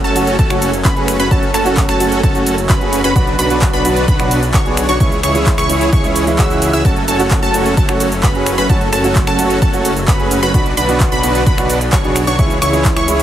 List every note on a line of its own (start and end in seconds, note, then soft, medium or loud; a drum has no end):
0.00 0.13 F#3 medium
0.00 4.96 F#3 medium
0.00 0.13 A3 medium
0.00 3.12 A3 medium
0.00 0.13 C#4 medium
0.00 3.12 C#4 medium
0.00 0.13 F#4 loud
0.04 0.36 F#1 medium
0.04 0.36 C#4 loud
0.04 0.36 F#4 loud
0.04 0.36 A4 loud
0.04 0.36 A5 loud
0.04 closed hi-hat soft
0.04 shaker soft
0.15 0.33 F#3 medium
0.15 0.33 A3 medium
0.15 0.33 C#4 medium
0.15 0.33 F#4 medium
0.15 open hi-hat medium
0.15 ride medium
0.15 shaker medium
0.27 closed hi-hat medium
0.27 shaker soft
0.39 0.83 F#1 medium
0.39 0.71 C#4 medium
0.39 0.71 A5 medium
0.39 kick loud
0.39 closed hi-hat medium
0.39 shaker soft
0.50 0.67 F#3 medium
0.50 0.67 A3 medium
0.50 0.68 C#4 medium
0.50 0.68 F#4 loud
0.50 finger snap medium
0.50 closed hi-hat soft
0.50 shaker soft
0.62 open hi-hat loud
0.62 ride medium
0.62 shaker medium
0.73 closed hi-hat medium
0.73 shaker soft
0.85 1.17 F#1 loud
0.85 1.17 C#4 medium
0.85 1.17 F#4 medium
0.85 1.17 B4 loud
0.85 1.17 B5 loud
0.85 kick loud
0.85 clap loud
0.85 closed hi-hat medium
0.85 shaker soft
0.96 1.13 F#3 medium
0.96 1.14 A3 medium
0.96 1.14 C#4 medium
0.96 1.14 G#4 medium
0.96 closed hi-hat soft
1.08 finger snap medium
1.08 open hi-hat loud
1.08 ride medium
1.08 shaker medium
1.20 1.29 F#1 loud
1.20 1.28 C#4 medium
1.20 1.28 F#4 medium
1.20 1.28 B4 loud
1.20 1.28 B5 loud
1.20 closed hi-hat medium
1.20 shaker soft
1.30 1.52 F#1 medium
1.30 1.41 F#3 medium
1.30 1.42 A3 medium
1.30 1.51 C#4 medium
1.30 1.42 C#4 medium
1.30 1.51 F#4 medium
1.30 1.42 F#4 loud
1.30 1.51 A4 loud
1.30 1.51 A5 loud
1.30 kick loud
1.30 closed hi-hat medium
1.30 shaker soft
1.43 closed hi-hat soft
1.54 1.86 F#1 loud
1.54 1.86 C#4 medium
1.54 1.86 F#4 medium
1.54 1.86 A4 medium
1.54 1.86 A5 medium
1.54 finger snap medium
1.54 open hi-hat loud
1.54 ride medium
1.54 shaker medium
1.65 1.97 F#3 medium
1.65 1.97 A3 medium
1.65 1.98 C#4 medium
1.65 1.98 F#4 loud
1.65 closed hi-hat medium
1.65 shaker soft
1.77 kick loud
1.77 clap loud
1.77 closed hi-hat medium
1.77 shaker soft
1.89 2.21 F#1 medium
1.89 2.21 C#4 loud
1.89 2.21 F#4 loud
1.89 2.21 A4 loud
1.89 2.21 A5 loud
1.89 finger snap medium
1.89 closed hi-hat soft
1.89 shaker soft
2.00 2.17 F#3 medium
2.00 2.17 A3 medium
2.00 2.18 C#4 medium
2.00 2.18 F#4 medium
2.00 open hi-hat loud
2.00 ride medium
2.00 shaker medium
2.12 closed hi-hat medium
2.12 shaker soft
2.23 2.67 F#1 medium
2.23 2.55 C#4 medium
2.23 2.55 F#4 medium
2.23 2.55 A4 medium
2.23 2.55 A5 medium
2.23 kick loud
2.23 closed hi-hat medium
2.23 shaker soft
2.34 2.52 F#3 medium
2.34 2.52 A3 medium
2.34 2.52 C#4 medium
2.34 2.52 F#4 medium
2.34 closed hi-hat soft
2.34 shaker soft
2.46 open hi-hat loud
2.46 ride medium
2.46 shaker medium
2.58 closed hi-hat medium
2.58 shaker soft
2.69 3.02 F#1 medium
2.69 3.01 C#4 medium
2.69 3.01 F#4 medium
2.69 3.01 B4 loud
2.69 3.01 B5 loud
2.69 kick loud
2.69 clap loud
2.69 closed hi-hat medium
2.69 shaker soft
2.81 2.98 F#3 medium
2.81 2.98 A3 medium
2.81 2.98 C#4 medium
2.81 2.99 G#4 medium
2.81 closed hi-hat soft
2.93 open hi-hat loud
2.93 ride medium
2.93 shaker medium
3.04 3.13 F#1 medium
3.04 3.13 C#4 loud
3.04 3.13 F#4 medium
3.04 3.13 B4 loud
3.04 3.13 B5 loud
3.04 closed hi-hat medium
3.04 shaker soft
3.15 3.36 B1 loud
3.15 3.26 B2 medium
3.15 3.26 F#3 medium
3.15 4.98 B3 medium
3.15 3.26 B3 medium
3.15 3.35 D4 medium
3.15 4.98 D4 medium
3.15 3.27 D4 medium
3.15 3.35 F#4 medium
3.15 3.27 F#4 medium
3.15 3.35 B4 medium
3.15 3.35 B5 loud
3.15 kick loud
3.15 closed hi-hat medium
3.15 shaker soft
3.27 closed hi-hat soft
3.39 3.71 B1 loud
3.39 3.71 D4 medium
3.39 3.71 F#4 medium
3.39 3.71 B4 medium
3.39 3.71 B5 medium
3.39 open hi-hat loud
3.39 ride medium
3.39 shaker medium
3.50 3.82 B2 medium
3.50 3.82 F#3 medium
3.50 3.82 B3 medium
3.50 3.82 D4 medium
3.50 3.82 F#4 loud
3.50 closed hi-hat medium
3.50 shaker soft
3.62 kick loud
3.62 clap loud
3.62 closed hi-hat medium
3.62 shaker soft
3.73 4.06 B1 medium
3.73 4.05 D4 loud
3.73 4.05 F#4 loud
3.73 4.05 B4 loud
3.73 4.05 B5 loud
3.73 closed hi-hat soft
3.73 shaker soft
3.84 4.02 B2 medium
3.84 4.02 F#3 medium
3.84 4.02 B3 medium
3.84 4.02 D4 medium
3.84 4.02 F#4 medium
3.84 open hi-hat loud
3.84 ride medium
3.84 shaker medium
3.96 closed hi-hat medium
3.96 shaker soft
4.08 4.52 B1 medium
4.08 4.40 D4 medium
4.08 4.40 F#4 medium
4.08 4.40 B5 medium
4.08 kick loud
4.08 closed hi-hat medium
4.08 shaker soft
4.19 4.36 B2 medium
4.19 4.37 F#3 medium
4.19 4.37 B3 medium
4.19 4.37 D4 medium
4.19 4.37 F#4 medium
4.19 finger snap medium
4.19 closed hi-hat soft
4.19 shaker soft
4.31 open hi-hat loud
4.31 ride medium
4.31 shaker medium
4.43 closed hi-hat medium
4.43 shaker soft
4.54 4.86 B1 loud
4.54 4.86 D4 medium
4.54 4.86 F#4 medium
4.54 4.86 C#5 medium
4.54 4.86 C#6 loud
4.54 kick loud
4.54 clap loud
4.54 closed hi-hat medium
4.54 shaker soft
4.65 4.82 B2 medium
4.65 4.83 F#3 medium
4.65 4.83 B3 medium
4.65 4.83 D4 medium
4.65 4.83 G#4 medium
4.65 closed hi-hat soft
4.77 finger snap medium
4.77 open hi-hat loud
4.77 ride medium
4.77 shaker medium
4.89 4.98 B1 loud
4.89 4.98 D4 medium
4.89 4.98 F#4 medium
4.89 4.98 C#5 loud
4.89 4.98 C#6 medium
4.89 closed hi-hat medium
4.89 shaker soft
5.00 5.21 C#2 medium
5.00 5.11 E3 medium
5.00 6.83 E3 medium
5.00 5.11 G#3 medium
5.00 6.83 G#3 medium
5.00 10.50 C#4 medium
5.00 5.11 C#4 medium
5.00 5.20 E4 medium
5.00 5.11 E4 loud
5.00 5.20 G#4 medium
5.00 5.20 C#5 medium
5.00 5.20 C#6 medium
5.00 kick loud
5.00 closed hi-hat medium
5.00 shaker soft
5.12 closed hi-hat soft
5.12 shaker soft
5.23 5.56 C#2 loud
5.23 5.55 E4 medium
5.23 5.55 G#4 medium
5.23 5.55 C#5 medium
5.23 5.55 C#6 medium
5.23 finger snap medium
5.23 open hi-hat loud
5.23 ride medium
5.23 shaker medium
5.34 5.66 E3 medium
5.34 5.67 G#3 medium
5.34 5.67 C#4 medium
5.34 5.67 E4 medium
5.34 closed hi-hat soft
5.34 shaker soft
5.46 kick loud
5.46 clap loud
5.46 closed hi-hat medium
5.46 shaker soft
5.58 5.90 C#2 medium
5.58 5.90 E4 loud
5.58 5.90 G#4 loud
5.58 5.90 C#5 loud
5.58 5.90 C#6 loud
5.58 finger snap medium
5.58 closed hi-hat soft
5.58 shaker soft
5.69 5.86 E3 medium
5.69 5.87 G#3 medium
5.69 5.87 C#4 medium
5.69 5.87 E4 medium
5.69 open hi-hat loud
5.69 ride medium
5.69 shaker medium
5.81 closed hi-hat medium
5.81 shaker soft
5.93 6.36 C#2 loud
5.93 6.25 E4 medium
5.93 6.25 G#4 medium
5.93 6.25 C#5 medium
5.93 6.24 C#6 medium
5.93 kick loud
5.93 closed hi-hat medium
5.93 shaker soft
6.04 6.21 E3 medium
6.04 6.21 G#3 medium
6.04 6.21 C#4 medium
6.04 6.22 E4 medium
6.04 closed hi-hat soft
6.04 shaker soft
6.16 open hi-hat loud
6.16 ride medium
6.16 shaker medium
6.27 6.37 E3 loud
6.27 6.37 G#3 medium
6.27 6.37 C#4 medium
6.27 6.37 E4 loud
6.27 closed hi-hat soft
6.27 shaker soft
6.38 6.71 C#2 loud
6.38 6.82 E3 loud
6.38 6.82 G#3 medium
6.38 6.82 C#4 medium
6.38 6.71 E4 medium
6.38 6.82 F#4 loud
6.38 6.71 G#4 medium
6.38 6.71 E5 medium
6.38 6.71 E6 loud
6.38 kick loud
6.38 clap loud
6.38 closed hi-hat medium
6.38 shaker soft
6.50 closed hi-hat soft
6.50 shaker soft
6.62 open hi-hat loud
6.62 ride medium
6.62 shaker medium
6.73 6.83 C#2 medium
6.73 6.82 E4 loud
6.73 6.82 G#4 medium
6.73 6.82 E5 loud
6.73 6.82 E6 medium
6.73 closed hi-hat medium
6.73 shaker soft
6.84 7.06 F#1 loud
6.84 6.95 F#3 medium
6.84 12.35 F#3 medium
6.84 6.96 A3 medium
6.84 10.50 A3 medium
6.84 7.05 C#4 medium
6.84 6.96 C#4 medium
6.84 7.05 F#4 medium
6.84 6.96 F#4 medium
6.84 7.05 A5 loud
6.84 kick loud
6.84 closed hi-hat medium
6.84 shaker soft
6.96 closed hi-hat soft
7.08 7.40 F#1 loud
7.08 7.40 C#4 medium
7.08 7.40 F#4 medium
7.08 7.40 A4 medium
7.08 7.40 A5 medium
7.08 open hi-hat loud
7.08 ride medium
7.08 shaker medium
7.19 7.51 F#3 medium
7.19 7.51 A3 medium
7.19 7.51 C#4 medium
7.19 7.52 F#4 loud
7.19 closed hi-hat medium
7.19 shaker soft
7.31 kick loud
7.31 clap loud
7.31 closed hi-hat medium
7.31 shaker soft
7.43 7.75 F#1 loud
7.43 7.74 C#4 loud
7.43 7.74 F#4 loud
7.43 7.74 A4 loud
7.43 7.74 A5 loud
7.43 closed hi-hat soft
7.43 shaker soft
7.54 7.71 F#3 medium
7.54 7.71 A3 medium
7.54 7.71 C#4 medium
7.54 7.72 F#4 medium
7.54 open hi-hat medium
7.54 ride medium
7.54 shaker medium
7.66 closed hi-hat soft
7.66 shaker soft
7.77 8.21 F#1 medium
7.77 8.09 C#4 medium
7.77 8.09 F#4 medium
7.77 8.09 A4 medium
7.77 8.09 A5 medium
7.77 kick loud
7.77 closed hi-hat medium
7.77 shaker soft
7.88 8.06 F#3 medium
7.88 8.06 A3 medium
7.88 8.06 C#4 medium
7.88 8.06 F#4 medium
7.88 finger snap medium
7.88 closed hi-hat soft
7.88 shaker soft
8.00 open hi-hat loud
8.00 ride medium
8.00 shaker medium
8.12 closed hi-hat soft
8.12 shaker soft
8.23 8.56 F#1 loud
8.23 8.55 C#4 medium
8.23 8.55 F#4 medium
8.23 8.55 B4 loud
8.23 8.55 B5 loud
8.23 kick loud
8.23 clap loud
8.23 closed hi-hat medium
8.23 shaker soft
8.34 8.52 F#3 medium
8.34 8.52 A3 medium
8.34 8.52 C#4 medium
8.34 8.52 G#4 medium
8.34 closed hi-hat soft
8.46 finger snap medium
8.46 open hi-hat loud
8.46 ride medium
8.46 shaker medium
8.58 8.67 F#1 medium
8.58 8.67 C#4 medium
8.58 8.67 F#4 medium
8.58 8.67 B4 loud
8.58 8.67 B5 loud
8.58 closed hi-hat soft
8.58 shaker soft
8.69 8.90 F#1 loud
8.69 8.80 F#3 medium
8.69 8.80 A3 medium
8.69 8.89 C#4 medium
8.69 8.80 C#4 medium
8.69 8.89 F#4 medium
8.69 8.81 F#4 medium
8.69 8.89 A4 loud
8.69 8.89 A5 medium
8.69 kick loud
8.69 closed hi-hat medium
8.69 shaker soft
8.81 closed hi-hat soft
8.93 9.25 F#1 loud
8.93 9.24 C#4 medium
8.93 9.24 F#4 medium
8.93 9.24 A4 medium
8.93 9.24 A5 medium
8.93 finger snap medium
8.93 open hi-hat loud
8.93 ride medium
8.93 shaker medium
9.04 9.36 F#3 medium
9.04 9.36 A3 medium
9.04 9.36 C#4 medium
9.04 9.36 F#4 loud
9.04 closed hi-hat medium
9.04 shaker soft
9.15 kick loud
9.15 clap loud
9.15 closed hi-hat medium
9.15 shaker medium
9.27 9.60 F#1 loud
9.27 9.59 C#4 loud
9.27 9.59 F#4 loud
9.27 9.59 A4 loud
9.27 9.59 A5 loud
9.27 finger snap medium
9.27 closed hi-hat soft
9.27 shaker soft
9.38 9.56 F#3 medium
9.38 9.56 A3 medium
9.38 9.56 C#4 medium
9.38 9.56 F#4 medium
9.38 open hi-hat medium
9.38 ride medium
9.38 shaker medium
9.50 closed hi-hat medium
9.50 shaker soft
9.62 10.06 F#1 loud
9.62 9.94 C#4 medium
9.62 9.94 F#4 medium
9.62 9.94 A4 medium
9.62 9.94 A5 medium
9.62 kick loud
9.62 closed hi-hat medium
9.62 shaker soft
9.73 9.90 F#3 medium
9.73 9.90 A3 medium
9.73 9.91 C#4 medium
9.73 9.91 F#4 medium
9.73 closed hi-hat soft
9.73 shaker soft
9.85 open hi-hat loud
9.85 ride medium
9.85 shaker medium
9.96 closed hi-hat medium
9.96 shaker soft
10.08 10.40 F#1 medium
10.08 10.40 C#4 medium
10.08 10.40 F#4 medium
10.08 10.40 B4 loud
10.08 10.40 B5 loud
10.08 kick loud
10.08 clap loud
10.08 closed hi-hat medium
10.08 shaker soft
10.19 10.36 F#3 medium
10.19 10.37 A3 medium
10.19 10.37 C#4 medium
10.19 10.37 G#4 medium
10.19 closed hi-hat soft
10.31 open hi-hat medium
10.31 ride medium
10.31 shaker medium
10.43 10.52 F#1 loud
10.43 10.51 C#4 medium
10.43 10.51 F#4 medium
10.43 10.51 B4 loud
10.43 10.51 B5 loud
10.43 closed hi-hat medium
10.43 shaker soft
10.54 10.75 B1 loud
10.54 10.65 B2 medium
10.54 10.65 F#3 medium
10.54 10.65 B3 medium
10.54 12.37 B3 medium
10.54 12.37 D4 medium
10.54 10.74 D4 medium
10.54 10.65 D4 medium
10.54 10.74 F#4 medium
10.54 10.65 F#4 loud
10.54 10.74 B4 loud
10.54 10.74 B5 loud
10.54 kick loud
10.54 closed hi-hat medium
10.54 shaker soft
10.66 closed hi-hat soft
10.77 11.10 B1 loud
10.77 11.09 D4 medium
10.77 11.09 F#4 medium
10.77 11.09 B4 medium
10.77 11.09 B5 medium
10.77 open hi-hat loud
10.77 ride medium
10.77 shaker medium
10.88 11.20 B2 medium
10.88 11.20 F#3 medium
10.88 11.21 B3 medium
10.88 11.21 D4 medium
10.88 11.21 F#4 loud
10.88 closed hi-hat medium
10.88 shaker soft
11.00 kick loud
11.00 clap loud
11.00 closed hi-hat medium
11.00 shaker soft
11.12 11.44 B1 loud
11.12 11.44 D4 loud
11.12 11.44 F#4 loud
11.12 11.44 B4 loud
11.12 11.44 B5 loud
11.12 closed hi-hat soft
11.12 shaker soft
11.23 11.40 B2 medium
11.23 11.40 F#3 medium
11.23 11.41 B3 medium
11.23 11.41 D4 medium
11.23 11.41 F#4 medium
11.23 open hi-hat medium
11.23 ride medium
11.23 shaker medium
11.35 closed hi-hat medium
11.35 shaker soft
11.46 11.90 B1 medium
11.46 11.78 D4 medium
11.46 11.78 F#4 medium
11.46 11.78 B4 medium
11.46 11.78 B5 medium
11.46 kick loud
11.46 closed hi-hat medium
11.46 shaker soft
11.57 11.75 B2 medium
11.57 11.75 F#3 medium
11.57 11.75 B3 medium
11.57 11.75 D4 medium
11.57 11.75 F#4 medium
11.57 finger snap medium
11.57 closed hi-hat soft
11.57 shaker soft
11.70 open hi-hat loud
11.70 ride medium
11.70 shaker medium
11.81 closed hi-hat medium
11.81 shaker soft
11.92 12.25 B1 loud
11.92 12.24 D4 medium
11.92 12.24 F#4 medium
11.92 12.24 C#5 loud
11.92 12.24 C#6 loud
11.92 kick loud
11.92 clap loud
11.92 closed hi-hat medium
11.92 shaker soft
12.04 12.21 B2 medium
12.04 12.21 F#3 medium
12.04 12.21 B3 medium
12.04 12.21 D4 medium
12.04 12.22 G#4 medium
12.04 closed hi-hat soft
12.16 finger snap medium
12.16 open hi-hat medium
12.16 ride medium
12.16 shaker medium
12.27 12.37 B1 loud
12.27 12.36 D4 medium
12.27 12.36 F#4 medium
12.27 12.36 C#5 loud
12.27 12.36 C#6 loud
12.27 closed hi-hat medium
12.27 shaker soft
12.38 12.60 C#2 loud
12.38 12.49 E3 medium
12.38 13.23 E3 medium
12.38 12.49 G#3 medium
12.38 13.23 G#3 medium
12.38 13.23 C#4 medium
12.38 12.50 C#4 medium
12.38 12.58 E4 medium
12.38 12.50 E4 medium
12.38 12.58 G#4 medium
12.38 12.58 C#5 medium
12.38 12.58 C#6 loud
12.38 kick loud
12.38 closed hi-hat medium
12.38 shaker soft
12.50 closed hi-hat soft
12.50 shaker soft
12.62 12.94 C#2 loud
12.62 12.94 E4 medium
12.62 12.94 G#4 medium
12.62 12.94 C#5 medium
12.62 12.94 C#6 loud
12.62 finger snap medium
12.62 open hi-hat loud
12.62 ride medium
12.62 shaker medium
12.73 13.05 E3 medium
12.73 13.05 G#3 medium
12.73 13.05 C#4 medium
12.73 13.06 E4 loud
12.73 closed hi-hat medium
12.73 shaker soft
12.85 kick loud
12.85 clap loud
12.85 closed hi-hat medium
12.85 shaker soft
12.96 13.23 C#2 medium
12.96 13.23 E4 loud
12.96 13.23 G#4 loud
12.96 13.23 C#5 loud
12.96 13.23 C#6 loud
12.96 finger snap medium
12.96 closed hi-hat soft
12.96 shaker soft
13.07 13.23 E3 medium
13.07 13.23 G#3 medium
13.07 13.23 C#4 medium
13.07 13.23 E4 medium
13.07 open hi-hat medium
13.07 ride medium
13.07 shaker medium
13.20 closed hi-hat medium